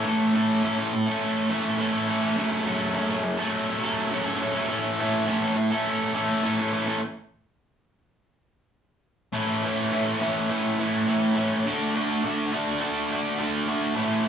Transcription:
0.05 A2 E3 A3 C#4 A4
0.33 E3 A3 C#4 A4
0.63 A2 E3 A3 C#4 A4
0.78 A3 C#4 A4
0.93 muted distorted electric guitar stroke
1.06 A3 C#4 A4
1.50 E3 A3 C#4 A4
1.78 A2 E3 A3 C#4 A4
1.92 A3 C#4 A4
2.07 E3 A3 C#4 A4
2.22 A3 C#4 A4
2.36 F#2 C#3 F#3 A3 C#4 A4
2.65 F#3 A3 C#4 A4
2.93 F#2 C#3 F#3 A3 C#4 A4
3.08 F#3 A3 C#4 A4
3.23 muted distorted electric guitar stroke
3.37 F#3 A3 C#4 A4
3.81 F#3 A3 C#4 A4
4.10 F#2 C#3 F#3 A3 C#4 A4
4.24 F#3 A3 C#4 A4
4.40 F#3 A3 C#4 A4
4.54 F#3 A3 C#4 A4
4.68 A2 E3 A3 C#4 A4
4.98 E3 A3 C#4 A4
5.27 A2 E3 A3 C#4 A4
5.42 A3 C#4 A4
5.56 muted distorted electric guitar stroke
5.71 A3 C#4 A4
6.13 E3 A3 C#4 A4
6.42 A2 E3 A3 C#4 A4
6.58 A3 C#4 A4
6.72 E3 A3 C#4 A4
6.86 A3 C#4 A4
9.32 A2 E3 A3 C#4 E4
9.63 A2 E3 A3 C#4 E4
9.92 A2 E3 A3 C#4 E4
10.20 A2 E3 A3 C#4 E4
10.49 A2 E3 A3 C#4 E4
10.78 A2 E3 A3 C#4 E4
11.08 A2 E3 A3 C#4 E4
11.36 A2 E3 A3 C#4 E4
11.67 D3 A3 D4 F#4
11.96 D3 A3 D4 F#4
12.24 D3 A3 D4 F#4
12.52 D3 A3 D4 F#4
12.81 D3 A3 D4 F#4
13.12 D3 A3 D4 F#4
13.39 D3 A3 D4 F#4
13.68 D3 A3 D4 F#4
13.95 A2 E3 A3 C#4 E4

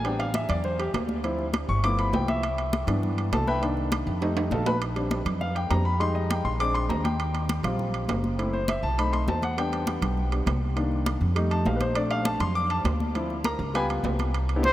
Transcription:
Already playing: A1
0.04 G3 B3 C4 D4 G5, high conga, high timbale
0.19 F5, high conga, high timbale
0.34 E5, high conga, high timbale, low timbale
0.49 E2 D5, low conga, high timbale
0.64 C5, high conga, low conga
0.79 G4, high conga, high timbale
0.94 D2, high conga, high timbale, low timbale
1.09 high conga
1.23 F3 C4 E4, high conga, high timbale
1.39 high conga
1.54 high conga, high timbale, low timbale
1.69 G1 C#6, high conga
1.83 F3 A3 B3 E4 D6, high conga, high timbale
1.98 B5, high conga, high timbale
2.13 C2 G5, high conga, low timbale
2.28 E5, high conga, high timbale
2.43 high conga, high timbale
2.58 high conga, high timbale
2.73 high conga, high timbale, low timbale
2.87 G2 E3 B3 D4, low conga, high timbale
3.03 high conga, low conga
3.18 high conga, high timbale
3.32 C2 A4 A5, high conga, high timbale, low timbale
3.47 B4 E5 G5 B5, high conga
3.62 D#3 A#3 D4, high conga, high timbale
3.77 high conga
3.92 high conga, high timbale, low timbale
4.07 F2, high conga
4.21 G3 A3 D#4, high conga, high timbale
4.37 high conga, high timbale
4.51 A#1 A4 D#5 F5 A5, high conga, low timbale
4.66 B4 B5, high conga, low timbale
4.82 high conga, high timbale
4.96 G3 C4 D4, high conga, high timbale
5.11 high conga, high timbale, low timbale
5.25 F2, low conga, high timbale
5.41 F5, high conga, low conga
5.55 G5, high conga, high timbale
5.70 F2 G3 C4 D4 A#5, high conga, high timbale, low timbale
5.85 B5
5.99 G3 G#3 D#4 C6, high conga, high timbale
6.15 D#5, high conga
6.30 G5, high conga, high timbale, low timbale
6.45 A#1 C6, high conga
6.59 G#3 C4 D4 D6, high conga, high timbale
6.74 C6, high conga, high timbale
6.89 D#2 A#5, high conga, low timbale
7.04 G5, high conga, high timbale
7.19 high conga, high timbale
7.34 high conga, high timbale
7.49 high conga, high timbale, low timbale
7.63 A#1 G3 C4 F4, low conga, high timbale
7.79 high conga, low conga
7.94 high conga, high timbale
8.08 F#1, high conga, high timbale, low timbale
8.24 high conga
8.38 A3 C4 E4, high conga, high timbale
8.53 C5, high conga
8.68 E5, high conga, high timbale, low timbale
8.83 B1 A5, high conga
8.97 A3 C4 D#4 B5, high conga, high timbale
9.13 C6, high conga, high timbale
9.28 E2 A5, high conga, low timbale
9.42 F#5, high conga, high timbale
9.57 G3 B3 D4 G5, high conga, high timbale
9.72 high conga, high timbale
9.87 high conga, high timbale, low timbale
10.02 B1, low conga, high timbale
10.17 high conga
10.32 G3 B3 D4, high conga, high timbale
10.46 C2, high conga, high timbale, low timbale
10.76 D#3 A#3 D4, high conga, high timbale
10.92 high conga
11.06 high conga, high timbale, low timbale
11.21 F2, high conga
11.35 G3 A3 D#4, high conga, high timbale
11.51 A5, high conga, high timbale
11.65 A#1 F5, high conga, low timbale
11.76 B4
11.80 C5, high conga, high timbale
11.95 A3 C4 D4 D5, high timbale
12.11 F5, high conga, high timbale
12.25 A5, high conga, high timbale, low timbale
12.40 F2 C6, low conga, high timbale
12.55 D6, high conga
12.70 A5, high conga, high timbale
12.85 D2, high conga, high timbale, low timbale
13.00 high conga
13.14 F3 C4 E4, high conga, high timbale
13.30 high conga
13.44 A#4 A#5, high conga, high timbale, low timbale
13.59 C#2, high conga
13.74 G3 B3 F4 B4 G5 G#5 B5, high conga, high timbale
13.89 high conga, high timbale
14.03 C2, high conga, low timbale
14.19 high conga, high timbale
14.34 high conga, high timbale
14.49 high conga, high timbale
14.56 B3 D4 E4 G4
14.64 C5, high conga, low timbale

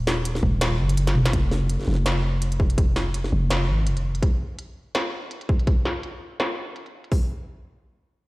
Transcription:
Already playing: D#1
0.07 snare
0.25 closed hi-hat
0.35 snare
0.43 D#1, kick
0.61 snare, closed hi-hat
0.79 F#1
0.89 closed hi-hat
0.97 closed hi-hat
1.07 snare, closed hi-hat
1.15 mid tom
1.26 snare, closed hi-hat
1.33 F1, kick, closed hi-hat
1.51 snare
1.70 closed hi-hat
1.79 snare
1.81 snare
1.83 snare
1.86 snare
1.87 F1, snare
1.90 snare
1.93 snare
1.95 snare
2.06 snare, closed hi-hat
2.42 closed hi-hat
2.52 closed hi-hat
2.60 kick
2.70 closed hi-hat
2.78 kick, closed hi-hat
2.96 snare
3.14 closed hi-hat
3.24 snare
3.32 F1
3.50 snare, closed hi-hat
3.69 G#1
3.87 F1, closed hi-hat
3.97 closed hi-hat
4.15 closed hi-hat
4.22 kick, closed hi-hat
4.59 closed hi-hat
4.95 snare, closed hi-hat
5.31 closed hi-hat
5.41 closed hi-hat
5.49 kick
5.59 closed hi-hat
5.67 kick, closed hi-hat
5.85 snare
6.03 closed hi-hat
6.40 snare, closed hi-hat
6.76 closed hi-hat
6.86 closed hi-hat
7.04 closed hi-hat
7.12 kick, open hi-hat

